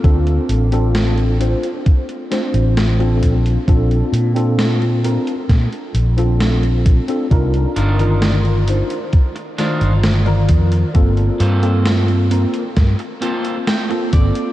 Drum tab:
HH |xxxxxxxxxxxxxxxx|xxxxxxxxxxxxxxxx|xxxxxxxxxxxxxxxx|xxxxxxxxxxxxxxxx|
SD |----o-----o-o---|----o---o---o---|----o-----o-o---|----o---o---o---|
BD |o-------o-----o-|o-------o-----o-|o-------o-----o-|o-------o-----o-|